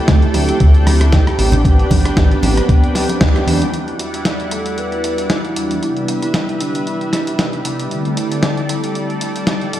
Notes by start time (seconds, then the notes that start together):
Already playing: A3 C4 D4 E4 G4 A4 G5
0.08 D2, kick, snare, closed hi-hat
0.22 closed hi-hat
0.34 D2, open hi-hat, high conga
0.49 closed hi-hat
0.60 D2, kick, closed hi-hat
0.74 closed hi-hat
0.87 cross-stick, open hi-hat, high conga
1.01 cross-stick, closed hi-hat, high conga
1.12 kick, snare, closed hi-hat
1.27 cross-stick, closed hi-hat
1.38 A1 B3 C4 D4 G4 B4, open hi-hat
1.52 closed hi-hat, low conga
1.64 B3 C4 D4 G4, kick, closed hi-hat
1.79 closed hi-hat
1.91 A1, kick, open hi-hat, high conga, low conga
2.05 A1, cross-stick, closed hi-hat
2.17 A1, kick, snare, closed hi-hat
2.32 closed hi-hat
2.43 A1, open hi-hat, high bongo, high conga
2.57 cross-stick, closed hi-hat
2.69 kick, closed hi-hat
2.84 closed hi-hat
2.95 snare, open hi-hat, high conga
3.09 closed hi-hat, high bongo, high conga
3.21 kick, snare, closed hi-hat
3.36 cross-stick, closed hi-hat
3.47 E2 B3 C4 D4 G4, open hi-hat
3.62 closed hi-hat
3.72 E2 G3 B3 D4 E4 F#4 D5 F#5, closed hi-hat
3.88 closed hi-hat
3.99 closed hi-hat
4.14 closed hi-hat
4.25 snare, closed hi-hat
4.40 closed hi-hat
4.51 A4, closed hi-hat
4.66 closed hi-hat
4.78 B4, closed hi-hat
4.92 closed hi-hat
5.04 closed hi-hat
5.18 closed hi-hat
5.30 E4, snare, closed hi-hat
5.45 closed hi-hat
5.55 E2 G3 B3 D4 F#4, closed hi-hat
5.71 closed hi-hat
5.81 C3 D4 E4 B4 E5, closed hi-hat
5.97 closed hi-hat
6.08 closed hi-hat
6.22 E4, closed hi-hat
6.34 snare, closed hi-hat
6.49 closed hi-hat
6.60 D4, closed hi-hat
6.75 closed hi-hat
6.87 E4, closed hi-hat
7.01 closed hi-hat
7.13 snare, closed hi-hat
7.27 closed hi-hat
7.39 snare, closed hi-hat
7.53 closed hi-hat
7.64 C3 G3 B3 D4 E4, closed hi-hat
7.79 closed hi-hat
7.89 D3 G3 A3 C4 E4 A4 D5, closed hi-hat
8.05 closed hi-hat
8.17 closed hi-hat
8.32 closed hi-hat
8.43 snare, closed hi-hat
8.57 closed hi-hat
8.69 closed hi-hat
8.84 closed hi-hat
8.95 closed hi-hat
9.10 closed hi-hat
9.21 closed hi-hat
9.36 closed hi-hat
9.47 snare, closed hi-hat
9.61 closed hi-hat
9.73 A2 G3 B3 C4 D4 E4 B4, closed hi-hat